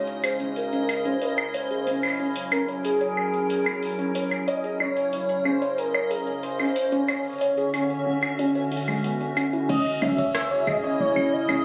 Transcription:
Already playing: ambient pad C#3 C#4 E4 F#4 D#5, soft synth lead C#5
0.03 closed hi-hat
0.07 synth pluck C#5, closed hi-hat
0.16 ambient pad D#5
0.24 synth pluck G#4, soft synth lead C5, closed hi-hat, claves
0.40 synth pluck C#4, closed hi-hat
0.56 soft synth lead A#4, closed hi-hat
0.73 synth pluck C#4, closed hi-hat
0.89 closed hi-hat, claves
1.05 synth pluck C#4, soft synth lead C5, closed hi-hat
1.22 soft synth lead A#4, synth pluck C#5, closed hi-hat
1.38 closed hi-hat, claves
1.54 soft synth lead C5, synth pluck C#5, closed hi-hat
1.70 synth pluck G#4, closed hi-hat
1.87 ambient pad F#3, synth pluck C#4, closed hi-hat
2.03 closed hi-hat, claves
2.05 claves
2.08 closed hi-hat, claves
2.10 claves
2.13 closed hi-hat, claves
2.15 claves
2.19 synth pluck C#4, closed hi-hat
2.25 closed hi-hat
2.30 closed hi-hat
2.36 closed hi-hat
2.49 synth pluck C#4, ambient pad A#4, soft synth lead A#4, closed hi-hat, claves
2.68 synth pluck C#5, closed hi-hat
2.85 soft synth lead G#4, closed hi-hat
3.01 synth pluck C#5, closed hi-hat
3.17 synth pluck G#4, claves
3.34 synth pluck C#4, closed hi-hat
3.50 closed hi-hat
3.66 synth pluck C#4, closed hi-hat, claves
3.83 closed hi-hat
3.85 closed hi-hat
3.87 closed hi-hat
3.90 closed hi-hat
3.92 closed hi-hat
3.94 closed hi-hat
3.97 synth pluck C#4, closed hi-hat
3.99 closed hi-hat
4.15 synth pluck C#5, closed hi-hat
4.31 closed hi-hat, claves
4.47 ambient pad C#3, synth pluck C#5, soft synth lead D#5, closed hi-hat
4.64 synth pluck G#4, closed hi-hat
4.80 synth pluck C#4, soft synth lead C#5, claves
4.97 closed hi-hat
5.13 synth pluck C#4, closed hi-hat
5.29 closed hi-hat
5.42 synth pluck C#4, soft synth lead C5, ambient pad D#5, claves
5.62 synth pluck C#5, closed hi-hat
5.78 soft synth lead A#4, closed hi-hat
5.94 synth pluck C#5, claves
6.11 synth pluck G#4, closed hi-hat
6.27 synth pluck C#4, closed hi-hat
6.43 soft synth lead C5, closed hi-hat
6.60 synth pluck C#4, closed hi-hat, claves
6.65 closed hi-hat
6.70 closed hi-hat
6.76 closed hi-hat
6.87 closed hi-hat
6.92 synth pluck C#4, closed hi-hat
7.08 ambient pad D3, synth pluck C#5, soft synth lead C#5, closed hi-hat, claves
7.25 ambient pad E5, closed hi-hat
7.28 closed hi-hat
7.30 closed hi-hat
7.33 closed hi-hat
7.36 closed hi-hat
7.38 closed hi-hat
7.41 synth pluck C#5, closed hi-hat
7.50 ambient pad F#4
7.57 synth pluck G#4, closed hi-hat
7.74 synth pluck C#4, closed hi-hat, claves
7.90 closed hi-hat
8.06 synth pluck C#4
8.23 closed hi-hat, claves
8.39 synth pluck C#4, closed hi-hat
8.55 synth pluck C#5, closed hi-hat
8.72 synth pluck C#4, closed hi-hat
8.77 closed hi-hat
8.83 closed hi-hat
8.88 synth pluck G#3, closed hi-hat, claves
8.93 closed hi-hat
8.99 closed hi-hat
9.04 synth pluck B3, closed hi-hat
9.21 closed hi-hat
9.37 synth pluck C#4, closed hi-hat, claves
9.53 synth pluck E4, closed hi-hat
9.69 fm bass C#2, ambient pad C#3, synth pluck C#4, soft synth lead D#5, kick, crash
10.02 fm bass C#2, synth pluck C#4, ambient pad E4, soft synth lead E5, open hi-hat, high tom, claves
10.18 synth pluck C#5, kick, closed hi-hat
10.35 cross-stick, claves
10.47 synth pluck C#5, ambient pad D#5
10.67 synth pluck G#4, soft synth lead D#5, kick, claves
10.84 synth pluck C#4
11.00 fm bass G#1, soft synth lead C#5
11.16 fm bass G#1, synth pluck C#4, claves
11.33 soft synth lead D#5
11.49 fm bass C#2, synth pluck C#4, closed hi-hat, claves

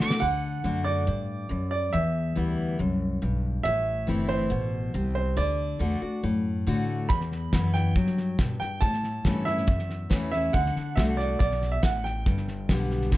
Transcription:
Already playing: steel-string acoustic guitar A2 D3 A3 D4 F#4
0.00 fiddle D6, snare
0.10 snare
0.20 upright bass D2, steel-string acoustic guitar D3, upright piano F#5
0.64 upright bass F#2, steel-string acoustic guitar D3 A3 D4 F#4
0.84 upright piano D5
1.07 steel-string acoustic guitar G2, upright bass A2
1.49 steel-string acoustic guitar F#2, upright bass F#2
1.71 upright piano D5
1.93 steel-string acoustic guitar E2, upright bass E2, upright piano E5
2.35 upright bass D2, steel-string acoustic guitar E3 G3 B3 E4
2.79 upright bass C2, steel-string acoustic guitar F#2
3.22 upright bass B1, steel-string acoustic guitar G2
3.63 upright bass A1, steel-string acoustic guitar A2, upright piano E5
4.07 upright bass G1, steel-string acoustic guitar E3 A3 C4 E4
4.29 upright piano C5
4.50 upright bass A1, steel-string acoustic guitar B2
4.94 upright bass C2, steel-string acoustic guitar C3
5.15 upright piano C5
5.37 upright bass D2, steel-string acoustic guitar D3, upright piano D5
5.79 upright bass E2, steel-string acoustic guitar D3 A3 D4 F#4
6.02 steel-string acoustic guitar D4 F#4, muted upright bass stroke
6.23 upright bass F#2, steel-string acoustic guitar A2
6.67 upright bass A2, steel-string acoustic guitar D3 A3 D4 F#4
7.09 upright bass E2, steel-string acoustic guitar E2, upright piano B5, kick, snare
7.21 snare
7.32 snare
7.53 upright bass F#2, steel-string acoustic guitar E3 B3 E4, kick, snare, hi-hat pedal
7.74 upright piano G5, snare
7.96 upright bass G2, steel-string acoustic guitar F#3, kick, snare
8.07 snare
8.18 snare
8.39 steel-string acoustic guitar G2, upright bass B2, kick, snare, hi-hat pedal
8.60 upright piano G5, muted upright bass stroke, snare
8.81 upright bass A2, steel-string acoustic guitar A2, upright piano A5, kick, snare
8.93 snare
9.04 snare
9.25 upright bass G2, steel-string acoustic guitar E3 A3 C#4 E4, kick, snare, hi-hat pedal
9.45 steel-string acoustic guitar C#4 E4, upright piano E5, snare
9.57 snare
9.67 steel-string acoustic guitar E2, upright bass F#2, kick, snare
9.79 snare
9.90 snare
10.10 upright bass E2, steel-string acoustic guitar E3 A3 C#4 E4, kick, snare, hi-hat pedal
10.32 steel-string acoustic guitar C#4 E4, upright piano E5, snare
10.53 upright bass D2, steel-string acoustic guitar D3, upright piano F#5, kick, snare
10.66 snare
10.76 muted upright bass stroke, snare
10.96 upright bass C2, steel-string acoustic guitar D3 A3 D4 F#4, upright piano E5, kick, snare, hi-hat pedal
11.17 upright piano D5, snare
11.39 upright bass B1, steel-string acoustic guitar B2, upright piano D5, kick, snare
11.51 snare
11.62 snare
11.72 upright piano E5
11.83 upright bass A1, steel-string acoustic guitar A2, upright piano F#5, kick, snare, hi-hat pedal
12.04 upright piano G5, snare
12.26 upright bass G1, steel-string acoustic guitar G2, kick, snare
12.37 snare
12.48 snare
12.69 upright bass B1, steel-string acoustic guitar D3 G3 B3 G4, kick, snare, hi-hat pedal
12.91 snare
13.01 snare
13.12 upright bass D2, steel-string acoustic guitar D3, kick, snare

